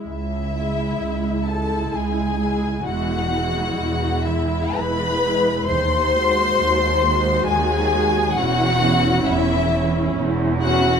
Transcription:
X:1
M:3/4
L:1/8
Q:1/4=66
K:C#m
V:1 name="Violin section"
e3 a g2 | f3 e b2 | ^b4 g2 | f2 e2 z f |]
V:2 name="Violin section"
E3 A G2 | F3 E B2 | ^B4 G2 | F2 E2 z F |]
V:3 name="Viola section"
z [G,E]2 [G,E]2 [G,E] | [G,E] [G,E]2 [G,E]2 [G,E] | z [G,F]2 [G,F]2 [G,F] | [CE] [CE]2 [CE]2 [CE] |]
V:4 name="Cello section" clef=bass
C,,2 C,,2 C,,2 | E,,2 E,,2 E,,2 | D,,2 D,,2 D,,2 | E,,2 E,,2 E,,2 |]
V:5 name="Double bass section" clef=bass
C,,2 C,,2 C,,2 | E,,,2 E,,,2 E,,,2 | D,,2 D,,2 D,,2 | E,,,2 E,,,2 E,,,2 |]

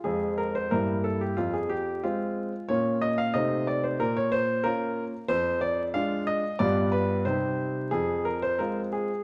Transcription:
X:1
M:2/4
L:1/16
Q:1/4=91
K:Bbdor
V:1 name="Grand piano"
A2 B c B2 =A G | F A G2 F4 | d2 e f e2 =d c | B d c2 B4 |
[K:Fdor] c2 d2 f2 e2 | d2 =B2 c4 | A2 B c B2 A2 |]
V:2 name="Grand piano"
[F,,A,CF]4 [G,,G,B,=E]4 | F,,4 [A,C]4 | [B,,B,DF]4 [C,=A,CE]4 | B,,4 [B,DF]4 |
[K:Fdor] F,,4 [A,DF]4 | [G,,G,=B,F]4 [C,G,CE]4 | F,,4 [A,CF]4 |]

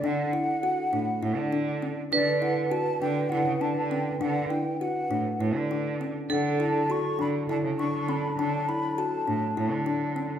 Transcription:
X:1
M:7/8
L:1/16
Q:1/4=101
K:D
V:1 name="Flute"
f12 z2 | d2 f2 a2 g2 f2 a2 g2 | f2 g2 f4 z6 | f2 a2 c'2 b2 a2 c'2 b2 |
a2 b2 a4 z6 |]
V:2 name="Vibraphone"
A12- A2 | B12- B2- | B12 z2 | A12- A2- |
A12- A2 |]
V:3 name="Kalimba"
D2 E2 F2 D2 E2 D2 C2 | D2 E2 F2 D2 E2 D2 C2 | D2 E2 F2 D2 E2 D2 C2 | D2 E2 F2 D2 E2 D2 C2 |
D2 E2 F2 D2 E2 D2 C2 |]
V:4 name="Woodwind section" clef=bass
z12 z2 | z12 z2 | z12 z2 | [D,F,D]12- [D,F,D]2- |
[D,F,D]12- [D,F,D]2 |]
V:5 name="Cello" clef=bass
D,2 z4 A,, z A,, D,4- D, | D,6 D,2 D, C, D, D,3 | D,2 z4 A,, z A,, D,4- D, | D,6 D,2 D, C, D, D,3 |
D,2 z4 A,, z A,, D,4- D, |]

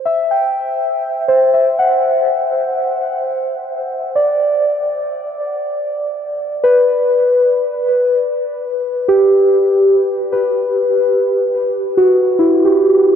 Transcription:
X:1
M:4/4
L:1/16
Q:1/4=73
K:G
V:1 name="Synth keys"
e g4- g c e f4- f z3 | z4 d4- d z6 z | B4- B z6 z G4- | G z B4- B z3 F2 E G3 |]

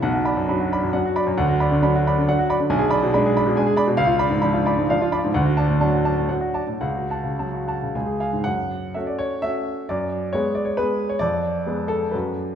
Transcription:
X:1
M:3/4
L:1/16
Q:1/4=131
K:Bdor
V:1 name="Grand piano"
f F [db] F,, b F [db] F,, f F [db] F,, | f F [db] D, b F [db] D, f F [db] D, | [K:F#m] g G [db] B,, b G [db] B,, g G [db] B,, | ^e ^E [db] G,, b E [db] G,, e E [db] G,, |
f F [da] A,, a F [da] A,, f F [da] A,, | f F [fa] C, a F [fa] C, g G [^eg] G,, | f4 e d c2 e4 | d4 c2 d c B3 c |
d6 A2 B4 |]
V:2 name="Grand piano" clef=bass
B,,,4 [F,D]4 [F,D]4 | D,,4 [F,D]4 [F,D]4 | [K:F#m] B,,,4 [G,D]4 [G,D]4 | C,,4 [^E,D]4 [E,D]4 |
D,,4 [F,D]4 [F,D]4 | C,,4 F,4 [C,,G,]4 | F,,4 [A,CF]4 [A,CF]4 | F,,4 [G,B,G]4 [G,B,G]4 |
=F,,4 [_A,_C_A]4 [^F,,=A,^CF]4 |]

